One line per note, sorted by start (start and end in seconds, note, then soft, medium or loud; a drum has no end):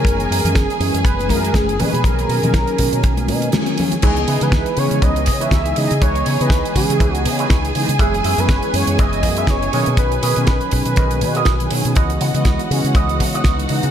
0.00 4.02 G#4 medium
0.00 0.58 A#4 loud
0.00 4.02 G#5 medium
0.05 0.25 F#1 medium
0.05 0.41 E3 medium
0.05 0.42 G#3 medium
0.05 0.42 B3 medium
0.05 0.42 C#4 medium
0.05 kick loud
0.05 closed hi-hat medium
0.20 closed hi-hat soft
0.30 0.42 F#2 medium
0.30 open hi-hat loud
0.44 0.53 F#2 medium
0.44 0.78 E3 medium
0.44 0.78 G#3 medium
0.44 0.78 B3 medium
0.44 0.79 C#4 loud
0.44 closed hi-hat medium
0.44 low conga medium
0.55 0.66 F#1 medium
0.55 1.05 G#4 medium
0.55 kick loud
0.55 snare loud
0.55 closed hi-hat medium
0.70 closed hi-hat soft
0.80 0.91 F#2 loud
0.80 1.16 E3 loud
0.80 1.16 G#3 medium
0.80 1.16 B3 medium
0.80 1.16 C#4 loud
0.80 open hi-hat medium
0.94 1.03 F#2 medium
0.94 closed hi-hat medium
1.05 1.31 F#1 medium
1.05 1.31 B4 medium
1.05 kick loud
1.05 closed hi-hat medium
1.19 1.52 E3 medium
1.19 1.52 G#3 medium
1.19 1.52 B3 medium
1.19 1.53 C#4 medium
1.19 closed hi-hat soft
1.19 high conga medium
1.29 1.50 F#2 medium
1.29 1.56 A#4 medium
1.29 kick medium
1.29 open hi-hat loud
1.29 high conga medium
1.45 closed hi-hat medium
1.54 1.81 F#1 loud
1.54 1.77 E3 medium
1.54 1.77 G#3 medium
1.54 1.77 B3 medium
1.54 1.77 C#4 medium
1.54 1.81 G#4 medium
1.54 kick loud
1.54 snare loud
1.54 closed hi-hat medium
1.54 high conga medium
1.69 closed hi-hat soft
1.79 1.90 B2 medium
1.79 1.95 D#3 medium
1.79 1.95 F#3 medium
1.79 1.95 A#3 medium
1.79 1.95 C#4 loud
1.79 2.06 B4 medium
1.79 open hi-hat loud
1.79 low conga loud
1.93 2.02 B2 medium
1.93 closed hi-hat medium
1.93 high conga medium
2.04 2.24 B1 medium
2.04 2.40 D#3 medium
2.04 2.40 F#3 medium
2.04 2.40 A#3 medium
2.04 2.40 C#4 medium
2.04 3.53 A#4 loud
2.04 kick loud
2.04 closed hi-hat medium
2.19 closed hi-hat soft
2.29 2.40 B2 medium
2.29 open hi-hat medium
2.42 2.52 B2 medium
2.42 2.76 D#3 loud
2.42 2.76 F#3 medium
2.42 2.76 A#3 medium
2.42 2.76 C#4 loud
2.42 closed hi-hat medium
2.42 low conga medium
2.54 2.65 B1 medium
2.54 kick loud
2.54 snare loud
2.54 closed hi-hat medium
2.67 closed hi-hat soft
2.78 2.90 B2 loud
2.78 3.14 D#3 loud
2.78 3.14 F#3 medium
2.78 3.14 A#3 medium
2.78 3.15 C#4 loud
2.78 kick medium
2.78 open hi-hat loud
2.93 3.01 B2 medium
2.93 closed hi-hat medium
3.03 3.30 B1 medium
3.03 kick loud
3.03 closed hi-hat medium
3.17 3.50 D#3 medium
3.17 3.51 F#3 medium
3.17 3.51 A#3 medium
3.17 3.51 C#4 medium
3.17 closed hi-hat soft
3.17 high conga medium
3.28 3.48 B2 loud
3.28 open hi-hat loud
3.28 high conga medium
3.42 closed hi-hat medium
3.52 3.75 D#3 medium
3.52 3.75 F#3 medium
3.52 3.76 A#3 medium
3.52 3.76 C#4 medium
3.52 snare loud
3.52 closed hi-hat medium
3.52 high conga medium
3.66 closed hi-hat soft
3.77 3.93 D#3 medium
3.77 3.93 F#3 medium
3.77 3.93 A#3 medium
3.77 3.93 C#4 loud
3.77 open hi-hat loud
3.77 low conga loud
3.92 closed hi-hat medium
3.92 high conga medium
4.02 4.23 C#2 loud
4.02 4.38 E3 medium
4.02 4.38 G#3 medium
4.02 4.38 B3 medium
4.02 4.17 D#4 loud
4.02 4.17 E4 loud
4.02 4.44 G#4 medium
4.02 11.98 G#4 medium
4.02 4.17 B4 loud
4.02 4.17 C#5 loud
4.02 4.38 D#5 medium
4.02 11.98 G#5 medium
4.02 kick loud
4.02 closed hi-hat medium
4.02 crash medium
4.16 closed hi-hat soft
4.28 4.38 C#3 medium
4.28 4.67 D#4 medium
4.28 4.67 E4 medium
4.28 4.67 B4 medium
4.28 4.67 E5 medium
4.28 open hi-hat loud
4.41 4.50 C#3 medium
4.41 4.75 E3 medium
4.41 4.75 G#3 medium
4.41 4.75 B3 medium
4.41 4.80 B4 loud
4.41 closed hi-hat medium
4.52 4.63 C#2 medium
4.52 kick loud
4.52 snare loud
4.52 closed hi-hat medium
4.66 closed hi-hat soft
4.76 4.88 C#3 loud
4.76 5.12 E3 loud
4.76 5.12 G#3 medium
4.76 5.12 B3 medium
4.76 5.13 C#4 loud
4.76 5.04 C#5 loud
4.76 open hi-hat loud
4.91 5.00 C#3 medium
4.91 closed hi-hat medium
5.02 5.29 C#2 medium
5.02 5.22 D#4 medium
5.02 5.22 E4 medium
5.02 5.22 B4 medium
5.02 5.22 C#5 medium
5.02 5.43 D#5 loud
5.02 kick loud
5.02 closed hi-hat medium
5.15 5.49 E3 medium
5.15 5.49 G#3 medium
5.15 5.49 B3 medium
5.15 5.49 D#5 medium
5.15 closed hi-hat soft
5.26 5.47 C#3 medium
5.26 kick medium
5.26 open hi-hat loud
5.40 5.59 D#4 loud
5.40 5.59 E4 medium
5.40 5.59 B4 medium
5.40 5.59 C#5 medium
5.40 5.80 E5 loud
5.40 closed hi-hat medium
5.51 5.71 C#2 medium
5.51 5.74 E3 medium
5.51 5.74 G#3 medium
5.51 5.74 B3 medium
5.51 5.74 D#4 medium
5.51 kick loud
5.51 snare loud
5.51 closed hi-hat medium
5.66 closed hi-hat soft
5.76 5.88 C#3 medium
5.76 5.92 E3 loud
5.76 5.92 G#3 medium
5.76 5.92 B3 medium
5.76 5.92 D#4 loud
5.76 6.02 D#5 loud
5.76 muted clean electric guitar stroke soft
5.76 open hi-hat loud
5.91 5.99 C#3 loud
5.91 closed hi-hat medium
6.01 6.21 C#2 loud
6.01 6.37 E3 medium
6.01 6.37 G#3 medium
6.01 6.37 B3 medium
6.01 6.15 D#4 loud
6.01 6.15 E4 medium
6.01 6.15 B4 loud
6.01 6.16 C#5 loud
6.01 6.43 C#5 loud
6.01 6.37 D#5 medium
6.01 kick loud
6.01 closed hi-hat medium
6.16 closed hi-hat soft
6.26 6.37 C#3 medium
6.26 6.65 D#4 medium
6.26 6.65 E4 medium
6.26 6.65 B4 medium
6.26 6.65 C#5 loud
6.26 open hi-hat loud
6.40 6.49 C#3 medium
6.40 6.73 E3 loud
6.40 6.73 G#3 medium
6.40 6.73 B3 medium
6.40 6.76 B4 loud
6.40 6.74 D#5 loud
6.40 closed hi-hat medium
6.50 6.61 C#2 medium
6.50 kick loud
6.50 snare loud
6.50 closed hi-hat medium
6.65 closed hi-hat soft
6.75 6.86 C#3 loud
6.75 7.11 E3 loud
6.75 7.11 G#3 medium
6.75 7.11 B3 loud
6.75 7.11 C#4 loud
6.75 7.22 G#4 medium
6.75 kick medium
6.75 open hi-hat loud
6.89 6.98 C#3 medium
6.89 closed hi-hat medium
7.00 7.27 C#2 medium
7.00 7.20 D#4 loud
7.00 7.20 E4 medium
7.00 7.20 B4 medium
7.00 7.20 C#5 loud
7.00 kick loud
7.00 closed hi-hat medium
7.14 7.47 E3 medium
7.14 7.48 G#3 medium
7.14 7.48 B3 medium
7.14 7.48 D#5 medium
7.14 closed hi-hat soft
7.25 7.45 C#3 loud
7.25 open hi-hat loud
7.39 7.57 D#4 medium
7.39 7.57 E4 medium
7.39 7.57 B4 medium
7.39 7.57 C#5 loud
7.39 closed hi-hat medium
7.49 7.70 C#2 loud
7.49 7.72 E3 medium
7.49 7.72 G#3 medium
7.49 7.72 B3 medium
7.49 7.72 D#4 medium
7.49 kick loud
7.49 snare loud
7.49 closed hi-hat medium
7.65 closed hi-hat soft
7.75 7.86 C#3 medium
7.75 7.90 E3 medium
7.75 7.90 G#3 medium
7.75 7.90 B3 medium
7.75 7.91 D#4 loud
7.75 muted clean electric guitar stroke soft
7.75 open hi-hat loud
7.89 7.97 C#3 loud
7.89 closed hi-hat medium
7.99 8.19 F#1 loud
7.99 8.35 E3 medium
7.99 8.35 G#3 medium
7.99 8.35 B3 medium
7.99 8.36 C#4 medium
7.99 8.13 F#4 loud
7.99 8.14 G#4 medium
7.99 8.41 G#4 loud
7.99 8.14 B4 loud
7.99 8.14 E5 loud
7.99 kick loud
7.99 closed hi-hat medium
8.14 closed hi-hat soft
8.24 8.35 F#2 medium
8.24 8.63 F#4 loud
8.24 8.63 G#4 medium
8.24 8.63 B4 medium
8.24 8.63 E5 loud
8.24 open hi-hat loud
8.38 8.47 F#2 medium
8.38 8.71 E3 loud
8.38 8.71 G#3 medium
8.38 8.72 B3 medium
8.38 8.72 C#4 loud
8.38 8.77 B4 loud
8.38 closed hi-hat medium
8.49 8.60 F#1 medium
8.49 kick loud
8.49 snare loud
8.49 closed hi-hat medium
8.63 closed hi-hat soft
8.73 8.85 F#2 loud
8.73 9.09 E3 loud
8.73 9.09 G#3 loud
8.73 9.09 B3 medium
8.73 9.09 C#4 loud
8.73 9.02 C#5 loud
8.73 open hi-hat loud
8.87 8.96 F#2 medium
8.87 closed hi-hat medium
8.99 9.25 F#1 loud
8.99 9.18 F#4 medium
8.99 9.18 G#4 medium
8.99 9.18 B4 medium
8.99 9.40 D#5 loud
8.99 9.18 E5 medium
8.99 kick loud
8.99 closed hi-hat medium
9.12 9.45 E3 medium
9.12 9.45 G#3 medium
9.12 9.46 B3 medium
9.12 9.46 C#4 medium
9.12 closed hi-hat soft
9.23 9.43 F#2 loud
9.23 kick medium
9.23 open hi-hat loud
9.37 9.55 F#4 medium
9.37 9.55 G#4 medium
9.37 9.55 B4 medium
9.37 9.56 E5 medium
9.37 9.51 E5 loud
9.37 closed hi-hat medium
9.47 9.68 F#1 medium
9.47 9.70 E3 medium
9.47 9.71 G#3 medium
9.47 9.71 B3 medium
9.47 9.71 C#4 medium
9.47 9.73 C#5 loud
9.47 kick loud
9.47 snare loud
9.47 closed hi-hat medium
9.62 closed hi-hat soft
9.73 9.84 B2 medium
9.73 9.88 D#3 loud
9.73 9.88 F#3 medium
9.73 9.88 A#3 medium
9.73 9.89 C#4 loud
9.73 10.14 F#4 medium
9.73 10.14 A#4 medium
9.73 10.14 B4 medium
9.73 9.85 C#5 loud
9.73 10.14 D#5 loud
9.73 open hi-hat loud
9.86 9.96 B2 medium
9.86 closed hi-hat medium
9.97 10.18 B1 loud
9.97 10.33 D#3 medium
9.97 10.33 F#3 medium
9.97 10.34 C#4 medium
9.97 10.44 B4 loud
9.97 kick loud
9.97 closed hi-hat medium
10.12 closed hi-hat soft
10.22 10.34 B2 medium
10.22 10.61 F#4 loud
10.22 10.61 A#4 medium
10.22 10.62 B4 medium
10.22 10.62 D#5 loud
10.22 open hi-hat loud
10.36 10.45 B2 medium
10.36 10.69 D#3 loud
10.36 10.70 F#3 medium
10.36 10.70 C#4 loud
10.36 closed hi-hat medium
10.47 10.58 B1 medium
10.47 10.71 B4 loud
10.47 kick loud
10.47 snare loud
10.47 closed hi-hat medium
10.61 closed hi-hat soft
10.71 10.83 B2 loud
10.71 11.07 D#3 loud
10.71 11.07 F#3 medium
10.71 11.08 C#4 loud
10.71 11.68 B4 loud
10.71 kick medium
10.71 open hi-hat loud
10.85 10.95 B2 medium
10.85 closed hi-hat medium
10.96 11.23 B1 medium
10.96 11.16 F#4 medium
10.96 11.16 A#4 medium
10.96 11.17 B4 medium
10.96 11.17 D#5 medium
10.96 kick loud
10.96 closed hi-hat medium
11.10 11.19 D#3 medium
11.10 11.19 F#3 medium
11.10 11.20 A#3 medium
11.10 11.20 C#4 medium
11.10 closed hi-hat soft
11.21 11.42 B2 medium
11.21 11.57 D#3 medium
11.21 11.57 F#3 medium
11.21 11.57 F#4 loud
11.21 open hi-hat loud
11.35 11.54 F#4 medium
11.35 11.54 A#4 medium
11.35 11.54 B4 medium
11.35 11.54 D#5 loud
11.35 closed hi-hat medium
11.45 11.66 B1 loud
11.45 kick loud
11.45 snare loud
11.45 closed hi-hat medium
11.60 11.94 D#3 loud
11.60 11.94 F#3 medium
11.60 11.94 C#4 loud
11.60 closed hi-hat soft
11.71 11.82 B2 medium
11.71 muted clean electric guitar stroke soft
11.71 open hi-hat loud
11.85 11.94 B2 medium
11.85 closed hi-hat medium
11.95 12.16 C#2 loud
11.95 12.31 E3 medium
11.95 12.32 G#3 medium
11.95 12.32 B3 medium
11.95 12.10 E4 loud
11.95 13.91 F#4 medium
11.95 12.10 B4 loud
11.95 12.10 C#5 loud
11.95 12.32 D#5 medium
11.95 12.11 D#5 loud
11.95 13.91 F#5 medium
11.95 kick loud
11.95 closed hi-hat medium
12.10 closed hi-hat soft
12.21 12.32 C#3 medium
12.21 12.60 E4 medium
12.21 12.60 B4 medium
12.21 12.60 C#5 medium
12.21 12.60 F#5 loud
12.21 open hi-hat loud
12.34 12.43 C#3 medium
12.34 12.68 E3 medium
12.34 12.68 G#3 medium
12.34 12.68 B3 medium
12.34 12.68 D#5 loud
12.34 closed hi-hat medium
12.45 12.56 C#2 medium
12.45 kick loud
12.45 snare loud
12.45 closed hi-hat medium
12.59 closed hi-hat soft
12.70 12.81 C#3 loud
12.70 13.06 E3 loud
12.70 13.06 G#3 medium
12.70 13.06 B3 medium
12.70 13.06 C#4 loud
12.70 open hi-hat loud
12.84 12.93 C#3 medium
12.84 closed hi-hat medium
12.95 13.22 C#2 medium
12.95 13.15 E4 medium
12.95 13.15 B4 medium
12.95 13.15 C#5 medium
12.95 13.15 D#5 loud
12.95 kick loud
12.95 closed hi-hat medium
13.09 13.42 E3 medium
13.09 13.43 G#3 medium
13.09 13.43 B3 medium
13.09 13.43 D#5 medium
13.09 closed hi-hat soft
13.20 13.40 C#3 loud
13.20 kick medium
13.20 open hi-hat loud
13.34 13.52 E4 loud
13.34 13.52 B4 medium
13.34 13.52 C#5 medium
13.34 13.52 D#5 medium
13.34 closed hi-hat medium
13.44 13.65 C#2 loud
13.44 13.67 E3 medium
13.44 13.67 G#3 medium
13.44 13.68 B3 medium
13.44 13.68 D#4 medium
13.44 kick loud
13.44 snare loud
13.44 closed hi-hat medium
13.59 closed hi-hat soft
13.69 13.81 C#3 medium
13.69 13.85 E3 loud
13.69 13.85 G#3 medium
13.69 13.85 B3 medium
13.69 13.85 D#4 loud
13.69 muted clean electric guitar stroke soft
13.69 open hi-hat loud
13.83 13.91 C#3 loud
13.83 closed hi-hat medium